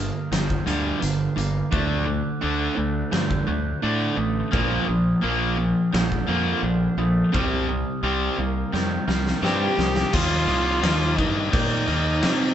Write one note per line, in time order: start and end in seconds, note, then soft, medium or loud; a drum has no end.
0.00 0.10 G1 medium
0.00 0.28 G2 medium
0.00 0.67 G2 medium
0.00 0.29 D3 medium
0.00 0.66 A#3 medium
0.00 1.01 D4 medium
0.00 0.32 F6 medium
0.31 0.56 G1 medium
0.31 0.64 G2 medium
0.31 0.64 D3 medium
0.31 1.72 F3 medium
0.31 0.67 G6 medium
0.31 snare loud
0.31 closed hi-hat loud
0.50 kick medium
0.66 0.91 D2 medium
0.66 1.00 G2 medium
0.66 1.00 D3 medium
0.66 1.00 G3 medium
0.66 1.36 A#3 medium
0.66 1.38 F6 medium
0.66 closed hi-hat medium
1.01 1.27 G1 medium
1.01 1.34 G2 medium
1.01 1.34 D3 medium
1.01 2.41 D4 medium
1.01 closed hi-hat loud
1.36 1.61 G1 medium
1.36 1.69 G2 medium
1.36 1.69 D3 medium
1.36 1.73 A#3 medium
1.36 1.73 D6 medium
1.36 closed hi-hat medium
1.71 2.21 D2 medium
1.71 2.05 D3 medium
1.71 3.11 D3 medium
1.71 2.05 A3 medium
1.71 2.06 D4 medium
1.71 2.08 F#6 medium
1.71 kick loud
2.07 2.39 D3 medium
2.07 2.39 A3 medium
2.07 2.42 D6 medium
2.41 2.67 D2 loud
2.41 2.75 D3 medium
2.41 2.76 A3 loud
2.41 3.81 D4 medium
2.41 2.76 D4 medium
2.41 3.12 F#6 medium
2.77 3.02 D2 medium
2.77 3.09 D3 medium
2.77 3.47 A3 medium
2.77 3.09 A3 medium
3.12 3.37 G2 medium
3.12 3.44 D3 medium
3.12 4.53 D3 medium
3.12 3.44 A3 medium
3.12 3.48 G6 medium
3.12 snare loud
3.31 kick medium
3.47 3.72 D2 medium
3.47 3.79 D3 medium
3.47 3.80 A3 medium
3.47 4.17 A3 medium
3.47 4.18 F#6 medium
3.82 4.08 A2 medium
3.82 4.16 D3 medium
3.82 4.16 A3 loud
3.82 4.53 D4 medium
3.82 4.16 D4 loud
4.17 4.42 A1 medium
4.17 4.49 D3 medium
4.17 4.50 A3 medium
4.17 4.53 A3 medium
4.17 4.53 D#6 medium
4.51 4.78 A#1 loud
4.51 4.85 A#2 medium
4.51 6.29 A#2 medium
4.51 4.85 F3 medium
4.51 4.86 A#3 medium
4.51 4.88 F6 medium
4.51 kick loud
4.86 5.13 A#1 medium
4.86 5.19 A#2 medium
4.86 5.19 F3 medium
4.86 5.23 D#6 medium
5.21 5.72 A#1 loud
5.21 5.56 A#2 loud
5.21 5.56 F3 loud
5.21 5.56 A#3 loud
5.21 6.62 D4 medium
5.21 5.93 F6 medium
5.57 5.90 A#2 medium
5.57 5.90 F3 medium
5.92 6.18 A#1 medium
5.92 6.25 A#2 medium
5.92 7.34 D3 medium
5.92 6.25 F3 medium
5.92 6.28 G6 medium
5.92 snare loud
6.12 kick medium
6.27 6.53 F2 medium
6.27 6.61 A#2 medium
6.27 6.61 F3 loud
6.27 6.61 A#3 medium
6.27 6.98 F6 medium
6.63 6.87 A#1 loud
6.63 6.95 A#2 medium
6.63 6.95 F3 medium
6.63 7.34 D4 medium
6.97 7.22 A#1 medium
6.97 7.30 A#2 medium
6.97 7.30 F3 medium
6.97 7.33 A3 medium
6.97 7.34 D#6 medium
7.32 7.83 C2 medium
7.32 7.66 C3 medium
7.32 9.09 C3 medium
7.32 7.66 G3 medium
7.32 7.67 C4 medium
7.32 7.69 F6 loud
7.32 kick loud
7.68 8.00 C3 medium
7.68 8.00 G3 medium
7.68 8.04 D#6 medium
8.03 8.27 C2 loud
8.03 8.36 C3 medium
8.03 8.37 G3 loud
8.03 8.37 C4 loud
8.03 9.41 C4 medium
8.03 8.74 F6 medium
8.38 8.63 C2 medium
8.38 8.70 C3 medium
8.38 8.70 G3 medium
8.38 9.07 A#3 medium
8.72 8.98 F2 medium
8.72 9.05 C3 medium
8.72 10.13 D#3 medium
8.72 9.05 G3 loud
8.72 9.08 G6 loud
8.72 snare medium
9.08 9.32 C2 medium
9.08 9.40 C3 medium
9.08 9.40 G3 medium
9.08 9.77 A#3 medium
9.08 9.78 F6 medium
9.08 snare medium
9.27 snare medium
9.42 9.67 G2 loud
9.42 9.76 C3 medium
9.42 9.76 G3 loud
9.42 10.13 C4 medium
9.42 9.77 C4 loud
9.42 10.14 G4 loud
9.42 snare medium
9.78 10.03 C2 loud
9.78 10.10 C3 medium
9.78 10.10 G3 medium
9.78 10.14 A#3 medium
9.78 10.14 D#6 medium
9.78 snare loud
9.96 snare medium
10.13 10.46 D#2 loud
10.13 10.45 D#3 medium
10.13 10.46 A#3 loud
10.13 10.47 D#4 loud
10.13 11.17 F4 loud
10.13 10.49 F6 loud
10.13 kick loud
10.13 crash loud
10.47 10.81 C2 medium
10.47 10.80 D#3 medium
10.47 10.81 A#3 medium
10.47 10.82 D#4 loud
10.47 10.83 D#6 medium
10.47 crash medium
10.81 11.16 D#2 loud
10.81 11.16 D#3 medium
10.81 11.17 A#3 loud
10.81 11.18 D#4 loud
10.81 11.53 F6 medium
10.81 snare loud
10.81 crash loud
11.16 11.51 G2 medium
11.16 11.50 D#3 loud
11.16 11.50 A#3 loud
11.16 11.52 D#4 loud
11.16 11.51 D#4 loud
11.16 kick medium
11.16 crash medium
11.51 11.86 A#2 loud
11.51 11.85 D#3 loud
11.51 11.86 A#3 loud
11.51 11.86 D#4 loud
11.51 12.54 D#4 loud
11.51 11.88 G6 loud
11.51 kick loud
11.51 crash loud
11.86 12.21 D#2 medium
11.86 12.20 D#3 medium
11.86 12.20 A#3 medium
11.86 12.21 D#4 medium
11.86 12.54 F6 medium
11.86 crash medium
12.21 12.54 C3 loud
12.21 12.54 D#3 medium
12.21 12.54 A#3 medium
12.21 12.54 D#4 loud
12.21 snare loud
12.21 crash loud